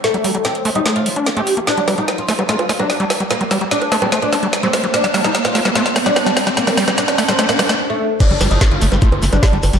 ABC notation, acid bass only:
X:1
M:4/4
L:1/16
Q:1/4=147
K:Gm
V:1 name="Acid bass" clef=bass
z G, G, G, z2 A, G, A,2 F, D A, A, z B, | z G, G, G, z2 A, G, A, z A, G, z G, z G, | z G, G, G, z2 A, G, A, z A, G, z G, z G, | z G, G, G, z2 A, G, A, z A, G, z G, z G, |
z G, G, G, z2 A, G, A, z G, A, z4 | z G, G, G, z2 A, G, A, z A, G, z G, z G, |]